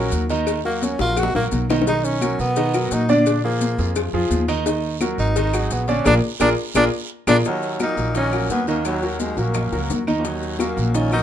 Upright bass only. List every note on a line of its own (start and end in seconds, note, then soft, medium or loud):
0.12 0.94 D#2 medium
0.99 1.32 A#1 loud
1.35 1.51 A#1 medium
1.52 2.34 B1 medium
2.39 2.88 B2 loud
2.91 3.73 A#2 medium
3.79 4.11 F2 loud
4.13 4.30 F2 medium
4.30 5.12 D#2 medium
5.18 5.67 G#1 loud
5.71 6.03 A#1 medium
6.06 6.19 A#1 loud
6.40 6.53 A#1 medium
6.74 6.88 A#1 medium
7.27 7.40 A#1 loud
7.97 8.46 A#1 medium
8.49 9.31 D#2 medium
9.37 9.70 A#1 medium
9.72 9.88 C#2 medium
9.90 10.72 D#2 medium
10.77 11.23 A#1 loud